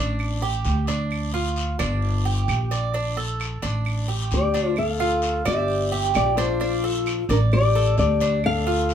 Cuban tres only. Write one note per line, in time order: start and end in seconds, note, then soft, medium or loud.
0.00 0.41 D4 medium
0.42 0.87 G4 medium
0.88 1.33 D4 medium
1.34 1.78 F4 medium
1.79 2.24 D4 medium
2.25 2.70 G4 medium
2.71 2.94 D5 medium
2.94 3.17 D4 medium
3.17 3.62 A4 medium
3.63 4.07 D4 medium
4.08 4.53 G4 medium
4.54 4.77 D4 medium
5.00 5.45 F4 medium
5.45 5.90 D5 medium
5.92 6.36 G4 medium
6.38 6.60 D4 loud
6.61 6.83 D4 medium
6.84 7.28 A4 medium
7.30 7.74 D5 medium
7.75 8.20 A4 medium
8.21 8.65 D4 medium
8.67 8.94 F4 medium